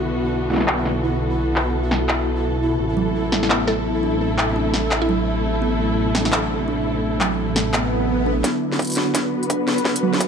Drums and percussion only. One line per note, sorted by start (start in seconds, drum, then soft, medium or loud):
0.50 snare soft
0.54 snare soft
0.56 snare medium
0.61 snare medium
0.68 clap loud
0.85 snare soft
1.56 clap medium
1.91 snare medium
2.09 clap loud
3.32 snare medium
3.43 snare medium
3.50 clap loud
3.68 snare soft
4.38 clap medium
4.74 snare medium
4.91 clap loud
6.15 snare medium
6.25 snare medium
6.32 clap loud
7.21 clap medium
7.56 snare medium
7.74 clap loud
8.44 kick medium
8.44 snare soft
8.44 closed hi-hat medium
8.72 snare soft
8.79 kick medium
8.79 closed hi-hat soft
8.82 closed hi-hat soft
8.85 closed hi-hat soft
8.87 closed hi-hat soft
8.90 closed hi-hat soft
8.92 closed hi-hat soft
8.93 closed hi-hat medium
8.95 snare soft
8.95 closed hi-hat medium
9.15 kick medium
9.15 snare soft
9.15 closed hi-hat medium
9.43 closed hi-hat soft
9.50 kick medium
9.50 closed hi-hat medium
9.68 snare soft
9.78 closed hi-hat soft
9.85 kick medium
9.85 snare medium
9.96 closed hi-hat medium
10.13 snare soft
10.20 kick medium
10.20 closed hi-hat medium